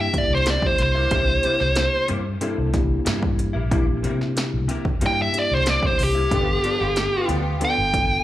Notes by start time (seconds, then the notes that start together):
0.01 E5
0.13 A#3 D4 E4 G4, muted clean electric guitar stroke, kick, closed hi-hat
0.18 D5
0.30 C2
0.35 C5
0.46 C3 G3 A#3 E4, snare, closed hi-hat
0.50 D5
0.62 muted clean electric guitar stroke, kick
0.67 C5
0.78 C2, muted clean electric guitar stroke, closed hi-hat
0.83 C5
0.95 G3 A#3 E4
1.11 C2 C3 G3 A#3 D4 E4 G4, kick, closed hi-hat
1.29 muted clean electric guitar stroke
1.43 C3 G3 A#3 E4, closed hi-hat
1.60 C2, snare
1.76 muted clean electric guitar stroke, snare, closed hi-hat
2.08 G2 C3 G3 A#3 E4, closed hi-hat
2.25 muted clean electric guitar stroke
2.41 C3 G3 A#3 D4 E4 A4, closed hi-hat
2.58 C2, muted clean electric guitar stroke
2.73 A#3 D4 E4 G4, muted clean electric guitar stroke, kick, snare, closed hi-hat
3.05 G2 C3 G3 A#3 E4, snare, closed hi-hat
3.22 muted clean electric guitar stroke, kick
3.38 muted clean electric guitar stroke, closed hi-hat
3.53 A#1 G3 A#3 E4
3.71 C3 G3 A#3 D4 E4 G4, kick, closed hi-hat
3.87 muted clean electric guitar stroke
4.03 C3 G3 A#3 E4, closed hi-hat
4.20 muted clean electric guitar stroke, snare
4.36 muted clean electric guitar stroke, snare, closed hi-hat
4.54 C2
4.68 C3 G3 A#3 E4, closed hi-hat
4.85 muted fingered electric bass stroke, muted clean electric guitar stroke, kick
5.01 G2 C3 G3 A#3 D4 E4 G4, closed hi-hat
5.06 G5
5.17 muted clean electric guitar stroke
5.22 E5
5.33 A#3 D4 E4 G4, muted clean electric guitar stroke, closed hi-hat
5.39 D5
5.51 C2 C5
5.65 C3 G3 A#3 E4, snare, closed hi-hat
5.70 D5
5.83 muted clean electric guitar stroke, kick
5.87 C5
5.99 C2, muted clean electric guitar stroke, open hi-hat
6.04 G4
6.15 G3 A#3 E4
6.31 G1 G2 F3 B3 D4 F4 G4 A4, kick, closed hi-hat
6.48 muted clean electric guitar stroke
6.63 G2 F3 B3 D4, closed hi-hat
6.79 G1 B3 F4 G4, muted clean electric guitar stroke
6.96 muted clean electric guitar stroke, snare, closed hi-hat
7.12 B3 F4 G4
7.28 D2 G2 F3 B3 D4, closed hi-hat
7.45 muted clean electric guitar stroke
7.60 G2 F3 B3 D4 F4 A4, closed hi-hat
7.65 G5
7.77 G1, muted clean electric guitar stroke
7.93 B3 D4 F4 A4, muted clean electric guitar stroke, kick, closed hi-hat